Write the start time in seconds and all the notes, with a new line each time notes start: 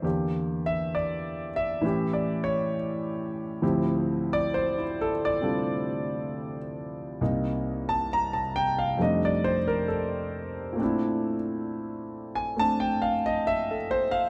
0.02 E2 D3 A#3 G4
0.66 E5
0.95 D5
1.56 E5
1.81 A2 E3 C#4
1.86 G4
2.13 D5
2.44 C#5
3.62 D2 A2 F3 C4 E4 G4
4.33 D5
4.54 C5
4.78 E4
5.01 A4
5.25 D5
5.41 C3 G3 D4 F4 A4
7.21 C2 C3 A#3 D#4
7.89 A5
8.13 A#5
8.33 A5
8.56 G5
8.79 F5
8.97 F2 C3 G3 A3
9.02 D4 D#4 D#5
9.25 D5
9.44 C5
9.67 A#4
9.88 A4
10.73 A#2 A3
10.78 C4 D4
10.84 E4
12.35 G#5
12.57 A3 C4 D4 A5
12.80 G5
13.02 F5
13.26 D#5
13.47 E5
13.71 A4
13.91 C5
14.11 F5